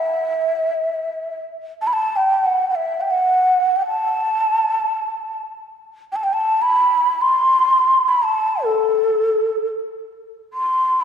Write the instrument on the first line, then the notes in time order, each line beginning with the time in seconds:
ney
Already playing: E5
1.81 A5
1.87 B5
1.93 A5
2.16 G5
2.45 F#5
2.70 F#5
2.75 E5
3.01 G5
3.10 F#5
3.76 G5
3.87 A5
6.12 G5 A5
6.23 G5
6.33 A5
6.62 B5
7.21 C6
8.08 B5
8.23 A5
8.64 A4
10.53 C6
11.01 B5